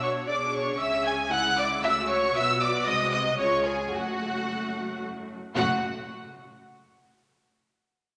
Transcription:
Already playing: B1 B2 D4 F#4
0.02 C#5 C#6
0.28 B1 B2 D4 G#4 D5 D6
0.53 C#5 C#6
0.78 C#2 C#3 C#4 G#4 E5 E6
1.05 G#5 G#6
1.31 G#3 E4 F#5 F#6
1.58 D5 D6
1.84 C#2 C#3 A3 F#4 E5 E6
2.09 C#5 C#6
2.35 B1 B2 B3 E5 E6
2.62 D5 D6
2.85 C2 C3 G#3 D#5 D#6
3.11 D#5 D#6
3.37 C#2 C#3 G#3 F4 C#5 C#6
3.65 G#4 G#5
3.91 F#1 F#2 A3 F#4 F#5
5.55 F#1 F#2 A3 F#4 F#5

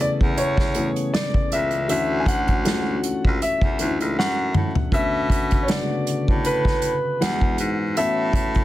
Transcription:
Already playing: C#3 E3 A3 B3 C#4 G#4
0.01 E2 D5
0.21 E2, kick
0.38 C#5, closed hi-hat
0.57 kick, snare
0.74 C#3 E3 A3 B3 G#4, closed hi-hat
0.96 closed hi-hat
1.14 D5, snare, closed hi-hat
1.34 kick
1.52 C#2 E5, closed hi-hat
1.71 closed hi-hat
1.88 D2 E3 A3 C#4 D4 F#4 E5, closed hi-hat
2.20 G#5
2.26 F#5, kick, closed hi-hat
2.48 kick, closed hi-hat
2.64 E3 A3 C#4 D4 F4, snare, closed hi-hat
2.73 F#4
3.04 C#2, closed hi-hat
3.25 C#2, kick
3.42 E5, closed hi-hat
3.61 E2, kick
3.79 D2 E3 A3 C#4 D4 D#4, closed hi-hat
3.88 E4
4.00 C#2, closed hi-hat
4.18 F#2 F#5, snare
4.55 A2, mid tom
4.75 floor tom
4.92 B2 D3 A3 B3 C#4 F#4 E5, kick, closed hi-hat
5.30 kick, closed hi-hat
5.51 kick, closed hi-hat
5.63 C#5
5.68 C#3 D3 A3 B3 F#4 D5, snare, closed hi-hat
6.07 A2, closed hi-hat
6.28 A2, kick
6.45 B4, closed hi-hat
6.65 kick, snare
6.82 closed hi-hat
7.20 E2 E3 G#3 B3 D4 F#4 F#5, snare, closed hi-hat
7.41 kick
7.58 G#2, closed hi-hat
7.96 A2 E3 A3 B3 C#4 F#4 E5, closed hi-hat
8.33 kick, closed hi-hat
8.54 kick, closed hi-hat

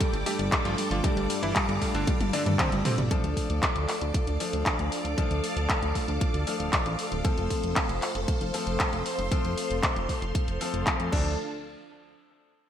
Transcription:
Already playing: G2 G3 A3 D4 A4 D5 G5 D6
0.00 G3, kick, closed hi-hat
0.13 G1 G3, closed hi-hat
0.26 G2 G3 A3 D4 G4 A4, open hi-hat
0.39 G1 G3, closed hi-hat
0.52 G3, kick, clap, closed hi-hat
0.65 G1 F3 F4, closed hi-hat
0.78 G3, open hi-hat
0.91 G1 F3 F4, closed hi-hat
1.04 G2 G3 A3 D4 A4 F5, kick, closed hi-hat
1.17 G1 G3, closed hi-hat
1.30 G3, open hi-hat
1.43 G1 E3 E4, closed hi-hat
1.56 G3, kick, clap, closed hi-hat
1.68 G1 G3, closed hi-hat
1.81 G3, kick, open hi-hat
1.94 G1 D3 D4, closed hi-hat
2.07 G3, kick, closed hi-hat, high tom
2.20 G1 G3, closed hi-hat, high tom
2.33 G2 D3 G3 A3 D4 A4, open hi-hat
2.46 G2 G3, closed hi-hat, mid tom
2.59 C3 C4, kick, clap, closed hi-hat, mid tom
2.72 G1 G3, closed hi-hat
2.85 C3 C4, mid tom, open hi-hat
2.98 G1 G3, closed hi-hat, mid tom
3.10 F3 A3 D4 A4 D5 F5 D6, kick, closed hi-hat
3.24 D2, closed hi-hat
3.37 kick, open hi-hat
3.50 D2, closed hi-hat
3.63 kick, clap, closed hi-hat
3.76 D2, closed hi-hat
3.89 clap, open hi-hat
4.01 D2, closed hi-hat
4.14 kick, closed hi-hat
4.27 D2, closed hi-hat
4.40 F3 A3 D4 A4, open hi-hat
4.53 D2, closed hi-hat
4.66 kick, clap, closed hi-hat
4.79 D2, closed hi-hat
4.92 open hi-hat
5.05 D2, closed hi-hat
5.18 F3 A3 D4 A4, kick, closed hi-hat
5.31 D2, closed hi-hat
5.44 open hi-hat
5.56 D2, closed hi-hat
5.69 kick, clap, closed hi-hat
5.82 D2, closed hi-hat
5.95 kick, open hi-hat
6.08 D2, closed hi-hat
6.21 kick, closed hi-hat
6.34 D2, closed hi-hat
6.47 F3 A3 D4 A4, open hi-hat
6.60 D1, closed hi-hat
6.73 kick, clap, closed hi-hat
6.86 A1, closed hi-hat
6.99 open hi-hat
7.11 D1, closed hi-hat
7.25 F3 A3 C4 A4 C5 C6, kick, closed hi-hat
7.38 F1, closed hi-hat
7.50 kick, open hi-hat
7.63 F1, closed hi-hat
7.76 kick, clap, closed hi-hat
7.89 F1, closed hi-hat
8.02 clap, open hi-hat
8.15 F1, closed hi-hat
8.28 kick, closed hi-hat
8.41 F1, closed hi-hat
8.54 F3 A3 C4 A4, open hi-hat
8.67 F1, closed hi-hat
8.80 kick, clap, closed hi-hat
8.93 F1, closed hi-hat
9.06 open hi-hat
9.18 F1, closed hi-hat
9.31 F3 A3 C4 A4, kick, closed hi-hat
9.44 F1, closed hi-hat
9.58 open hi-hat
9.70 F1, closed hi-hat
9.83 kick, clap, closed hi-hat
9.96 F1, closed hi-hat
10.09 kick, open hi-hat
10.22 F1, closed hi-hat
10.35 kick, closed hi-hat
10.48 F1, closed hi-hat
10.61 F3 A3 C4 A4, open hi-hat
10.74 F1, closed hi-hat
10.87 kick, clap, closed hi-hat
10.99 F2, closed hi-hat
11.12 D2 F3 A3 D4 A4 F5 A5, kick, crash

